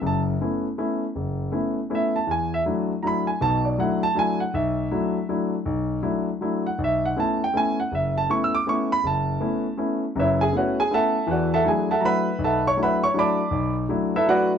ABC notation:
X:1
M:3/4
L:1/8
Q:"Swing" 1/4=160
K:Bdor
V:1 name="Grand piano"
a z4 z | z4 e a | g e z2 [^ab] g | a d f a g f |
e4 z2 | z4 z f | e f a =g ^g f | e a (3c' e' d' c' b |
a4 z2 | [EBce] [Gg] [FBcf] [Gg] [Aefa]2 | [FBdf] [Aefa] [Gg] [Aefa] [Bef^ab]2 | [Aefa] [cc'] [Befb] [cc'] [dabd']2- |
[dabd'] z2 [EABe] [FBdf] z |]
V:2 name="Grand piano"
[F,,,F,,]2 [A,B,CE] z [A,B,CE] z | F,,,2 [A,B,CE] z [A,B,CE] z | E,,2 [F,A,DE] z [F,A,DE] z | [B,,,B,,]2 [F,A,DE] z [F,A,DE] z |
B,,,2 [F,A,DE] z [F,A,DE] z | B,,,2 [F,A,DE] z [F,A,DE] z | B,,,2 [A,B,CE] z [A,B,CE] z | F,,,2 [A,B,CE] z [A,B,CE] z |
F,,,2 [A,B,CE] z [A,B,CE] z | [F,,,F,,]2 [A,B,CE] z [A,B,CE] z | [E,,E,]2 [F,A,DE] z [F,A,DE] z | B,,,2 [F,A,DE] z [F,A,DE] z |
B,,,2 [F,A,DE] z [F,A,DE] z |]